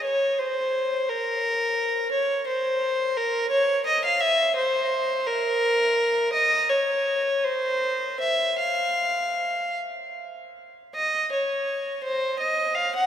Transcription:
X:1
M:6/8
L:1/16
Q:3/8=56
K:Bbm
V:1 name="Violin"
d2 c4 B6 | [K:Cphr] d2 c4 B2 d2 e f | =e2 c4 B6 | e2 d4 c4 =e2 |
f6 z6 | [K:Db] e2 d4 c2 e2 f g |]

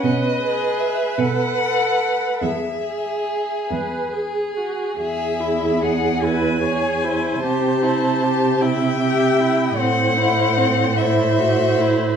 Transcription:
X:1
M:6/8
L:1/8
Q:3/8=50
K:E
V:1 name="Violin"
d2 e f3 | e3 z3 | e2 f g3 | a3 =g3 |
f3 e3 |]
V:2 name="Viola"
B6 | G3 B G F | G3 B c =c- | =c3 e3 |
=c3 c3 |]
V:3 name="Violin"
z G2 A A2 | z G3 G2 | G E G E G E | =G E G E G E |
=C E C E F E |]
V:4 name="Cello" clef=bass
B,,3 B,,3 | E,,3 E,,3 | E,,6 | =C,6 |
A,,6 |]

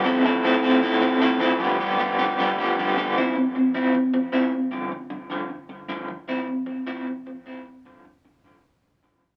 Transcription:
X:1
M:4/4
L:1/8
Q:1/4=154
K:Flyd
V:1 name="Clean electric guitar" clef=bass
[F,CEA] [F,CEA] [F,CEA] [F,CEA] [F,CEA] [F,CEA] [F,CEA] [F,CEA] | [G,,D,F,G,B,G] [G,,D,F,G,B,G] [G,,D,F,G,B,G] [G,,D,F,G,B,G] [G,,D,F,G,B,G] [G,,D,F,G,B,G] [G,,D,F,G,B,G] [G,,D,F,G,B,G] | [F,CE] [F,C] [F,C] [F,CE] [F,C] [F,C] [F,CE] [F,C] | [G,,D,F,] [G,,D,] [G,,D,] [G,,D,F,] [G,,D,] [G,,D,] [G,,D,F,] [G,,D,] |
[F,CE] [F,C] [F,C] [F,CE] [F,C] [F,C] [F,CE] F, | [G,,D,F,] [G,,D,] [G,,D,] [G,,D,F,] [G,,D,] [G,,D,] [G,,D,F,] [G,,D,] |]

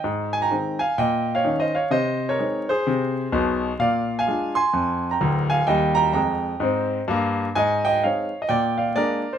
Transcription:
X:1
M:4/4
L:1/16
Q:"Swing" 1/4=128
K:Ab
V:1 name="Grand piano"
z2 a [gb]3 [fa]2 [eg]3 [df]- (3[df]2 [ce]2 [df]2 | [ce]3 [Bd]3 [Ac]8- [Ac]2 | [=df]3 [fa]3 [ac']4- [ac'] [gb]3 [fa]2 | [eg]2 [gb]2 [gb]12 |
[ea]2 [eg]2 [df]3 e [=dg]2 [df]2 [Bd]3 c |]
V:2 name="Grand piano" clef=bass
A,,4 [E,A,C]4 B,,4 [E,DE]4 | C,4 [A,CE]4 C,4 [_C,,_C,]4 | B,,4 [A,=DF]4 F,,4 [=D,,,=D,,]4 | [E,,G,]4 [F,,A,]4 [A,,C]4 [G,,B,]4 |
A,,4 [A,CE]4 B,,4 [A,B,=D]4 |]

